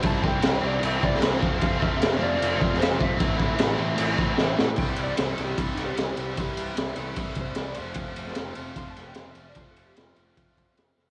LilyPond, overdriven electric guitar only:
\new Staff \with { instrumentName = "Overdriven electric guitar" } { \clef bass \time 4/4 \key c \major \tempo 4 = 151 <c e g c' e'>8 <c e g c' e'>8 <c e g c' e'>8 <c e g c' e'>8 <c e g c' e'>8 <c e g c' e'>8 <c e g c' e'>8 <f, c f a c' f'>8 | <f, c f a c' f'>8 <f, c f a c' f'>8 <f, c f a c' f'>8 <f, c f a c' f'>8 <f, c f a c' f'>8 <f, c f a c' f'>8 <f, c f a c' f'>8 <f, c f a c' f'>8 | <a, e a c' e'>8 <a, e a c' e'>8 <a, e a c' e'>8 <a, e a c' e'>8 <a, e a c' e'>8 <a, e a c' e'>8 <a, e a c' e'>8 <a, e a c' e'>8 | <c e g c' e'>4 <c e g c' e'>8 <c e g c' e'>8 <c e g c' e'>4 <c e g c' e'>8 <c e g c' e'>8 |
<c e g c' e'>4 <c e g c' e'>8 <c e g c' e'>8 <c e g c' e'>4 <c e g c' e'>8 <f, c f a c' f'>8 | <f, c f a c' f'>4 <f, c f a c' f'>8 <f, c f a c' f'>8 <f, c f a c' f'>4 <f, c f a c' f'>8 <f, c f a c' f'>8 | <f, c f a c' f'>4 <f, c f a c' f'>8 <f, c f a c' f'>8 <f, c f a c' f'>4 <f, c f a c' f'>8 <f, c f a c' f'>8 | }